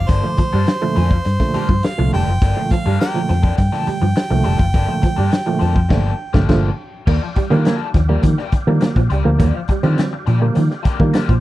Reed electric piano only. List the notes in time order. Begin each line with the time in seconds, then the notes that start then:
0.24 A#2 D3 F3 A3
0.82 A#2 D3 F3 A3
1.40 A#2 D3 F3 A3
1.98 A#2 D3 F3 A3
2.56 A#2 D3 F3 A3
3.14 A#2 D3 F3 A3
3.72 A#2 D3 F3 A3
4.30 A#2 D3 F3 A3
4.88 A#2 D3 F3 A3
5.47 A#2 D3 F3 A3
5.90 A#2 D3 F3 A3
6.34 A#2 D3 F3 A3
6.49 A#2 D3 F3 A3
7.51 D3 F3 G3 A#3
8.09 D3 F3 G3 A#3
8.67 D3 F3 G3 A#3
9.25 D3 F3 G3 A#3
9.83 D3 F3 G3 C4
10.42 D3 F3 G3 A#3
11.00 D3 F3 G3 A#3